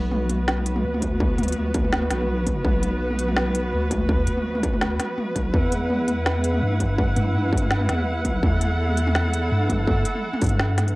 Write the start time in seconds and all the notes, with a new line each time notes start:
Already playing: B1 B3 F#4 B4
0.11 mid tom
0.29 closed hi-hat, mid tom
0.48 snare
0.58 mid tom
0.66 closed hi-hat
0.76 mid tom
0.84 D2
0.94 mid tom
1.02 kick, closed hi-hat
1.20 kick, mid tom
1.38 D2, closed hi-hat, mid tom
1.43 closed hi-hat
1.48 closed hi-hat
1.52 closed hi-hat, mid tom
1.74 kick, closed hi-hat
1.84 mid tom
1.92 snare
2.02 mid tom
2.10 B1, snare, closed hi-hat
2.20 mid tom
2.46 kick, closed hi-hat, mid tom
2.65 B1, kick, mid tom
2.83 closed hi-hat, mid tom
3.10 mid tom
3.19 closed hi-hat
3.28 mid tom
3.37 snare
3.46 mid tom
3.55 closed hi-hat
3.73 D2, mid tom
3.91 kick, closed hi-hat, mid tom
4.09 kick, mid tom
4.27 D2, closed hi-hat
4.37 mid tom
4.55 mid tom
4.63 kick, closed hi-hat
4.73 mid tom
4.81 snare
5.00 snare, closed hi-hat, mid tom
5.18 mid tom
5.36 C2, kick, closed hi-hat, mid tom
5.53 E2 E4 F#5, kick
5.72 closed hi-hat, mid tom
5.90 mid tom
6.08 closed hi-hat, mid tom
6.26 snare
6.36 mid tom
6.44 closed hi-hat
6.54 mid tom
6.62 G2
6.72 mid tom
6.80 kick, closed hi-hat
6.98 kick, mid tom
7.16 G2, closed hi-hat, mid tom
7.34 mid tom
7.53 kick
7.57 closed hi-hat
7.62 mid tom
7.71 snare
7.81 mid tom
7.89 E2, snare, closed hi-hat
7.99 mid tom
8.25 kick, closed hi-hat, mid tom
8.43 E2 A4, kick, mid tom
8.61 closed hi-hat, mid tom
8.89 mid tom
8.97 closed hi-hat
9.07 mid tom
9.15 snare
9.25 mid tom
9.34 closed hi-hat
9.51 G2, mid tom
9.69 kick, closed hi-hat, mid tom
9.87 kick, mid tom
9.90 mid tom
9.93 mid tom
9.95 mid tom
9.98 mid tom
9.99 mid tom
10.01 mid tom
10.04 closed hi-hat, mid tom
10.15 mid tom
10.33 mid tom
10.41 G2, kick, closed hi-hat
10.44 closed hi-hat
10.46 closed hi-hat
10.51 mid tom
10.60 snare
10.78 snare, closed hi-hat, mid tom
10.88 closed hi-hat